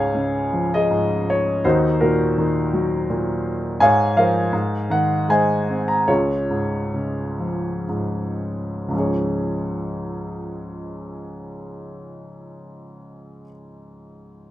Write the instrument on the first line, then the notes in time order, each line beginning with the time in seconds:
grand piano
Already playing: C#2 G#2 G#4 C#5 F5 G#5
0.15 C#3
0.53 F3
0.74 G#4 D#5
0.91 G#2
1.30 C#5
1.64 D#2 D#4 F#4 C5
2.01 A#2 D#4 F#4 A#4
2.38 D#3
2.73 F#3
3.10 A#2
3.80 G#2 C#5 F5 G#5
4.17 F3 A#4 C5 F5
4.53 G#2
4.90 D#3 F#5
5.29 G#3 C5 D#5 G#5
5.69 C4
5.88 A#5
6.08 C#2 F4 G#4 C#5
6.50 G#2
6.94 C#3
7.39 F3
7.89 G#2
8.88 C#2 G#2
8.93 F3 C#4
8.97 G#4 C#5